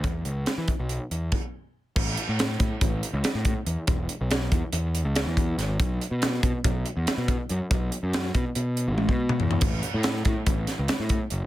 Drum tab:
CC |------------x-----|x-----------------|------------------|------------------|
HH |x-x-x-x-x-x-------|--x-x-x-x-x-x-x-x-|x-x-x-x-x-x-x-x-x-|x-x-x-x-x-x-x-x-x-|
SD |----o-------------|----o-------o-----|----o-------o---o-|----o-------o-----|
T1 |------------------|------------------|------------------|------------------|
T2 |------------------|------------------|------------------|------------------|
FT |------------------|------------------|------------------|------------------|
BD |o-----o-----o-----|o-----o-o-----o---|o-----o-------o---|o-----o-o-----o---|

CC |------------------|x-----------------|
HH |x-x-x-x-x-x-------|x-x-x-x-x-x-x-x-x-|
SD |----o-------------|----o-----o-o-----|
T1 |------------o-----|------------------|
T2 |---------------o--|------------------|
FT |----------------oo|------------------|
BD |o-----o------o----|o-----o-o-----o---|